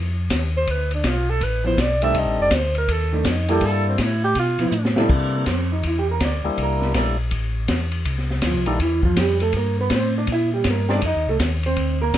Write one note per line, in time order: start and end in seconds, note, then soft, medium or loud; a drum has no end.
0.00 0.30 F2 medium
0.30 0.67 D#2 medium
0.30 kick soft
0.30 snare medium
0.30 hi-hat pedal medium
0.30 ride medium
0.57 0.72 C5 medium
0.67 1.03 D2 medium
0.67 0.93 B4 medium
0.67 kick soft
0.67 ride medium
0.91 1.09 D4 medium
0.91 ride soft
1.04 1.41 B1 medium
1.04 1.31 F4 medium
1.04 kick soft
1.04 snare medium
1.04 hi-hat pedal medium
1.04 ride medium
1.30 1.44 A4 medium
1.41 1.77 A1 medium
1.41 1.66 B4 medium
1.41 kick soft
1.41 ride medium
1.64 1.77 F3 medium
1.64 1.78 B3 medium
1.64 1.78 E4 medium
1.64 1.81 C5 medium
1.77 2.14 B1 medium
1.77 2.04 D5 medium
1.77 kick soft
1.77 snare medium
1.77 hi-hat pedal medium
1.77 ride medium
2.02 2.14 D#3 medium
2.02 2.50 G3 medium
2.02 2.15 A3 medium
2.02 2.51 C4 medium
2.02 2.15 D4 medium
2.02 2.51 D4 medium
2.02 2.51 D#4 medium
2.02 2.51 A4 medium
2.02 2.19 E5 loud
2.02 ride soft
2.14 2.27 C2 medium
2.14 2.40 D#5 medium
2.14 kick soft
2.14 ride medium
2.26 2.39 A1 medium
2.38 2.51 F1 medium
2.38 2.56 D5 loud
2.51 2.88 D2 medium
2.51 2.77 C5 medium
2.51 kick soft
2.51 snare medium
2.51 hi-hat pedal medium
2.51 ride medium
2.75 2.93 A#4 loud
2.75 ride soft
2.88 3.25 D#2 medium
2.88 3.14 A4 medium
2.88 kick soft
2.88 ride medium
3.12 3.25 D#3 medium
3.12 3.25 A3 medium
3.12 3.31 C4 medium
3.12 3.26 D4 medium
3.24 3.61 F2 medium
3.24 kick soft
3.24 snare medium
3.24 hi-hat pedal medium
3.24 ride medium
3.29 3.53 D#4 medium
3.48 3.97 G3 medium
3.48 3.62 A#3 medium
3.48 3.97 A#3 medium
3.48 3.97 D4 medium
3.48 3.62 E4 medium
3.48 3.98 E4 medium
3.48 3.67 G4 medium
3.48 3.62 A4 medium
3.48 3.98 A4 medium
3.48 ride soft
3.61 3.98 G2 medium
3.61 kick soft
3.61 ride medium
3.65 3.88 A4 loud
3.89 4.03 C4 medium
3.98 4.35 A2 medium
3.98 4.23 E4 medium
3.98 kick soft
3.98 snare medium
3.98 hi-hat pedal medium
3.98 ride medium
4.24 4.36 G4 loud
4.35 4.58 B2 medium
4.35 4.95 F4 medium
4.35 kick soft
4.35 ride medium
4.59 4.66 B2 soft
4.59 4.72 F3 medium
4.59 4.73 B3 medium
4.59 4.73 E4 medium
4.59 ride soft
4.72 5.09 A2 loud
4.72 hi-hat pedal medium
4.85 snare medium
4.96 5.45 C3 medium
4.96 5.45 G3 medium
4.96 5.45 A#3 medium
4.96 5.10 A#3 medium
4.96 5.46 D4 medium
4.96 5.10 E4 medium
4.96 5.45 E4 medium
4.96 5.10 A4 medium
4.96 5.46 A4 medium
4.96 snare medium
5.09 5.46 C3 medium
5.09 kick medium
5.09 crash medium
5.36 5.51 A#3 medium
5.46 5.83 F2 medium
5.46 kick soft
5.46 snare medium
5.46 hi-hat pedal medium
5.46 ride medium
5.51 5.72 C4 medium
5.72 5.85 D#4 medium
5.83 6.20 E2 medium
5.83 kick soft
5.83 ride medium
5.87 5.98 E4 medium
5.99 6.10 G4 medium
6.11 6.22 A#4 medium
6.20 6.42 D2 medium
6.20 kick soft
6.20 snare medium
6.20 hi-hat pedal medium
6.20 ride medium
6.25 6.48 D5 medium
6.44 6.51 D2 soft
6.44 6.93 G3 medium
6.44 6.93 A#3 medium
6.44 6.93 D4 medium
6.44 6.93 E4 medium
6.48 6.60 C5 medium
6.58 6.94 C2 medium
6.58 kick soft
6.58 ride medium
6.63 7.17 A#4 medium
6.82 snare soft
6.94 7.31 A#1 medium
6.94 7.17 G3 medium
6.94 7.17 A#3 medium
6.94 7.17 D4 medium
6.94 7.18 E4 medium
6.94 7.18 A4 medium
6.94 kick soft
6.94 snare medium
6.94 hi-hat pedal medium
6.94 ride medium
7.31 7.68 A1 medium
7.31 kick soft
7.31 ride medium
7.68 8.05 E2 medium
7.68 kick soft
7.68 snare medium
7.68 hi-hat pedal medium
7.68 ride medium
7.92 ride soft
8.05 8.42 C2 medium
8.05 kick soft
8.05 ride medium
8.18 snare soft
8.31 snare soft
8.42 8.55 D2 medium
8.42 kick soft
8.42 snare medium
8.42 hi-hat pedal medium
8.42 ride medium
8.46 8.68 F3 medium
8.46 8.68 F4 medium
8.54 8.67 C2 medium
8.66 8.79 A#1 medium
8.66 8.81 D#3 medium
8.66 8.79 G3 medium
8.66 8.79 A#3 medium
8.66 8.79 D4 medium
8.66 8.80 D#4 medium
8.66 8.79 E4 medium
8.66 8.79 A4 medium
8.66 ride soft
8.79 9.16 E2 medium
8.79 9.04 E3 medium
8.79 9.04 E4 medium
8.79 kick soft
8.79 ride medium
9.03 9.18 F3 medium
9.03 9.18 F4 medium
9.03 kick soft
9.16 9.53 F2 medium
9.16 9.42 G3 medium
9.16 9.41 G4 medium
9.16 kick soft
9.16 snare medium
9.16 hi-hat pedal soft
9.16 ride medium
9.40 9.55 A3 medium
9.40 9.54 A4 medium
9.40 ride soft
9.53 9.90 G2 medium
9.53 kick soft
9.53 ride medium
9.57 9.79 A#3 medium
9.57 9.79 A#4 medium
9.81 9.92 B3 medium
9.81 9.92 B4 medium
9.90 10.27 A2 medium
9.90 kick soft
9.90 snare medium
9.90 hi-hat pedal medium
9.90 ride medium
9.95 10.17 C4 medium
9.95 10.16 C5 medium
10.18 10.30 D4 medium
10.18 10.30 D5 medium
10.27 10.64 A#2 medium
10.27 kick soft
10.27 ride medium
10.32 10.54 E4 medium
10.32 10.53 E5 loud
10.54 10.66 G3 soft
10.54 10.66 G4 soft
10.64 11.01 G2 medium
10.64 kick soft
10.64 snare medium
10.64 hi-hat pedal medium
10.64 ride medium
10.70 10.91 A#3 medium
10.70 10.91 A#4 medium
10.89 11.01 G3 medium
10.89 11.01 C4 medium
10.89 11.02 D4 medium
10.89 11.04 D4 medium
10.89 11.02 D#4 medium
10.89 11.02 A4 medium
10.89 11.04 D5 loud
10.89 snare medium
11.02 11.14 F2 medium
11.02 kick soft
11.02 ride medium
11.06 11.28 D#4 medium
11.06 11.27 D#5 loud
11.16 11.28 D#2 medium
11.27 11.39 C2 medium
11.27 11.37 A3 medium
11.27 11.36 A4 medium
11.40 11.75 D#2 medium
11.40 kick soft
11.40 snare medium
11.40 hi-hat pedal medium
11.40 ride medium
11.63 11.99 C4 medium
11.63 11.99 C5 medium
11.63 ride soft
11.76 12.12 D2 medium
11.76 kick soft
11.76 ride medium
12.02 12.18 A#3 medium
12.02 12.18 A#4 medium
12.14 12.18 C#2 medium
12.14 kick soft
12.14 snare medium
12.14 hi-hat pedal medium
12.14 ride medium